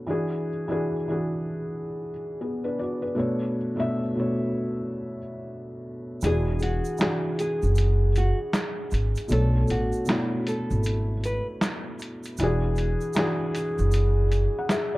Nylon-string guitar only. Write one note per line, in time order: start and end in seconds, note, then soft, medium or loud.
6.25 6.59 G#4 loud
6.63 7.35 F#4 medium
7.40 7.74 G#4 medium
8.18 8.38 F#4 medium
9.33 9.66 A4 loud
9.71 10.43 F#4 medium
10.48 10.82 A4 medium
11.26 11.46 B4 medium